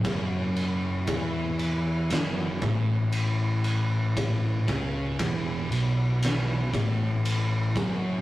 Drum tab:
RD |xxxxxxxx|xxxxxxxx|
SD |----o---|----o---|
BD |o-o--o--|ooo--o-o|